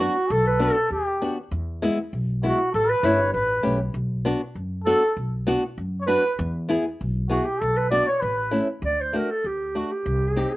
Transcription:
0.00 0.15 B3 medium
0.00 0.15 D4 medium
0.00 0.15 F#4 medium
0.00 0.31 F#4 medium
0.00 0.33 F#4 medium
0.30 0.67 B1 medium
0.30 0.90 A4 loud
0.30 0.46 A4 loud
0.47 0.60 B4 medium
0.59 0.75 B3 medium
0.59 0.75 D4 medium
0.59 0.75 F#4 medium
0.59 0.90 A4 medium
0.90 1.27 D#2 medium
0.90 1.33 G4 medium
0.90 1.34 G4 medium
1.22 1.36 B3 medium
1.22 1.36 D4 medium
1.22 1.37 F#4 medium
1.51 1.88 E2 medium
1.82 1.97 G#3 medium
1.82 1.97 B3 medium
1.82 1.98 E4 medium
2.13 2.49 B1 medium
2.43 2.58 G#3 medium
2.43 2.58 B3 medium
2.43 2.58 E4 medium
2.43 2.71 F#4 medium
2.47 2.73 F#4 medium
2.73 2.92 A1 medium
2.73 2.90 A4 medium
2.73 2.91 A4 loud
2.88 3.34 B4 medium
2.88 3.07 B4 medium
3.03 3.31 G1 medium
3.03 3.19 A3 medium
3.03 3.18 C#4 medium
3.03 3.19 E4 medium
3.03 3.33 C#5 medium
3.33 3.61 A1 medium
3.33 3.76 B4 medium
3.63 3.91 B1 medium
3.63 3.79 A3 medium
3.63 3.79 C#4 medium
3.63 3.79 G4 medium
3.94 4.31 B1 medium
4.25 4.40 B3 medium
4.25 4.40 D4 medium
4.25 4.40 F#4 medium
4.55 4.92 F#2 medium
4.84 5.01 B3 medium
4.84 5.02 D4 medium
4.84 5.01 F#4 medium
4.84 5.13 A4 medium
4.84 5.14 A4 loud
5.17 5.53 B1 medium
5.47 5.62 B3 medium
5.47 5.62 D4 medium
5.47 5.62 F#4 medium
5.78 6.14 F#2 medium
6.01 6.09 C#5 medium
6.07 6.22 B3 medium
6.07 6.23 D4 medium
6.07 6.23 F#4 medium
6.07 6.36 B4 loud
6.07 6.38 B4 medium
6.39 6.75 E2 loud
6.69 6.84 B3 medium
6.69 6.84 E4 medium
6.69 6.85 G#4 medium
7.01 7.37 B1 medium
7.29 7.45 B3 medium
7.29 7.45 E4 medium
7.29 7.47 F#4 medium
7.29 7.46 F#4 medium
7.29 7.45 G#4 medium
7.44 7.62 G4 medium
7.44 7.61 G4 medium
7.60 7.98 B1 medium
7.60 7.90 A4 medium
7.60 7.79 A4 loud
7.77 7.91 B4 medium
7.91 8.06 B3 medium
7.91 8.06 D4 medium
7.91 8.06 F#4 medium
7.91 8.05 D5 medium
7.91 8.05 D5 loud
8.05 8.22 C#5 medium
8.05 8.21 C#5 medium
8.20 8.59 A1 medium
8.20 8.67 B4 medium
8.20 8.65 B4 medium
8.51 8.67 A3 medium
8.51 8.67 C#4 medium
8.51 8.67 E4 medium
8.82 9.19 D2 medium
8.82 9.03 D5 medium
9.01 9.18 C5 medium
9.13 9.28 A3 medium
9.13 9.28 D4 soft
9.13 9.29 F#4 medium
9.13 9.33 A#4 medium
9.31 9.48 A4 medium
9.44 9.81 D2 medium
9.44 9.79 G4 medium
9.75 9.90 A3 medium
9.75 9.90 D4 soft
9.75 9.90 F#4 medium
9.75 9.93 F#4 medium
9.92 10.57 G4 medium
10.06 10.42 C2 medium
10.36 10.51 C4 medium
10.36 10.51 D#4 medium
10.36 10.52 G4 medium

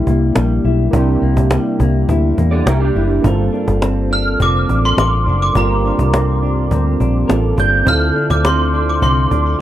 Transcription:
0.00 0.93 C3 medium
0.00 0.36 G3 medium
0.00 0.88 A#3 medium
0.00 0.89 D4 medium
0.00 0.64 E4 medium
0.00 0.90 E4 medium
0.00 0.91 G4 medium
0.07 0.30 C2 medium
0.07 1.22 A#3 medium
0.07 cajon bass medium
0.35 0.59 A#1 medium
0.35 1.51 G3 medium
0.35 cajon slap loud
0.64 0.87 B1 medium
0.64 2.08 E4 medium
0.64 cajon slap soft
0.91 1.16 C2 loud
0.91 3.25 C3 medium
0.91 3.19 A#3 medium
0.91 3.20 D4 medium
0.91 3.21 E4 medium
0.91 cajon bass loud
0.96 3.22 G4 medium
1.22 1.57 C2 medium
1.22 1.80 A#3 medium
1.22 cajon slap soft
1.37 cajon bass medium
1.51 2.67 G3 medium
1.51 cajon slap loud
1.80 2.03 C2 medium
1.80 2.37 A#3 medium
1.80 cajon bass medium
2.09 2.32 D2 loud
2.09 2.95 E4 medium
2.09 cajon bass medium
2.38 2.61 E2 medium
2.38 3.82 A#3 medium
2.38 cajon bass medium
2.51 2.66 A4 medium
2.51 2.65 D5 medium
2.51 cajon slap soft
2.66 2.89 C2 medium
2.66 6.17 G3 medium
2.66 2.80 E4 medium
2.66 2.80 A#4 medium
2.66 cajon slap loud
2.80 3.22 D4 medium
2.80 3.22 G4 medium
2.95 3.18 F#1 medium
2.95 3.31 E4 medium
2.95 cajon slap soft
3.11 cajon slap soft
3.22 3.47 G1 loud
3.22 5.54 G2 medium
3.22 5.50 A#3 medium
3.22 5.51 C4 medium
3.22 5.52 F4 medium
3.22 4.96 A#4 medium
3.22 cajon bass loud
3.27 5.52 A4 medium
3.53 4.10 D4 medium
3.53 cajon slap soft
3.67 4.36 G1 medium
3.67 cajon bass medium
3.67 cajon slap soft
3.82 4.40 C4 medium
3.82 cajon slap loud
4.11 4.68 D4 medium
4.11 4.42 F6 loud
4.11 cajon slap soft
4.40 4.63 F1 medium
4.40 6.14 C4 medium
4.40 4.86 D6 medium
4.40 cajon bass medium
4.69 4.92 A1 medium
4.69 5.26 D4 medium
4.69 cajon bass medium
4.85 4.98 C6 medium
4.97 5.28 A1 medium
4.97 5.55 A#4 medium
4.97 5.41 D6 medium
4.97 cajon slap loud
5.26 5.50 F#1 medium
5.26 5.85 D4 medium
5.26 cajon slap soft
5.42 5.56 D6 medium
5.53 5.90 G1 medium
5.53 7.86 G2 medium
5.53 7.24 A#3 medium
5.53 7.25 C4 medium
5.53 7.25 F4 medium
5.53 7.27 A#4 medium
5.53 6.10 A#5 medium
5.53 cajon bass loud
5.58 5.63 G4 medium
5.64 7.30 A#4 medium
5.84 6.42 D4 medium
5.84 cajon slap soft
5.99 6.67 C2 medium
5.99 cajon bass medium
5.99 cajon slap soft
6.14 6.70 C4 medium
6.14 cajon slap loud
6.42 7.00 D4 medium
6.42 cajon slap soft
6.71 6.94 D2 medium
6.71 8.18 C4 medium
6.71 cajon bass medium
7.00 7.23 A#1 medium
7.00 7.56 D4 medium
7.00 cajon bass medium
7.28 7.52 A1 medium
7.28 7.86 A#3 medium
7.28 7.84 C4 soft
7.28 7.87 F4 soft
7.28 7.87 A4 medium
7.28 7.86 A#4 medium
7.28 cajon slap loud
7.57 7.81 G1 medium
7.57 8.14 D4 medium
7.57 7.88 G6 medium
7.57 cajon bass medium
7.85 8.10 D2 medium
7.85 9.61 D3 medium
7.85 9.61 C4 medium
7.85 9.61 E4 medium
7.85 9.61 F4 medium
7.85 9.59 A4 medium
7.85 8.28 F6 loud
7.85 cajon bass loud
7.90 9.61 A4 medium
8.15 8.73 D4 medium
8.15 cajon slap soft
8.30 8.98 D2 medium
8.30 8.44 D6 medium
8.30 cajon bass medium
8.30 cajon slap soft
8.44 9.02 C4 medium
8.44 8.86 C6 medium
8.44 cajon slap loud
8.73 9.30 D4 medium
8.73 cajon slap soft
8.89 9.03 D6 medium
9.02 9.25 C2 medium
9.02 9.61 C4 medium
9.02 9.56 C6 medium
9.02 cajon bass medium
9.31 9.54 D2 medium
9.31 9.61 D4 medium
9.31 cajon bass medium

